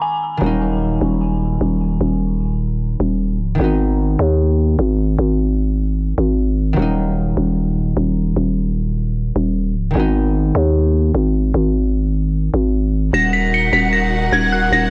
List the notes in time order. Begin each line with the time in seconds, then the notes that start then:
Already playing: D#3 G#3 B3 D#4
0.02 G#5
0.37 D#3 F#3
0.42 D#1 A#3
0.46 D#4
1.01 D#1
1.61 D#1
2.01 D#1
3.00 D#1
3.40 C#1
3.55 D#3 G#3
3.60 G#1 B3
3.64 D#4
4.19 D#2
4.79 G#1
5.19 G#1
6.18 G#1
6.73 D#3 F#3
6.78 D#1 A#3
6.82 D#4
7.37 D#1
7.97 D#1
8.36 D#1
9.36 D#1
9.76 C#1
9.91 D#3 G#3
9.95 G#1 B3
9.99 D#4
10.55 D#2
11.15 G#1
11.54 G#1
12.54 G#1
13.13 D#1 D#4 F#4 A#4 F#5 A#6
13.33 B6
13.54 C#7
13.73 D#1 B6
13.93 A#6
14.32 D#1 G#6
14.52 F#6
14.72 D#1 A#6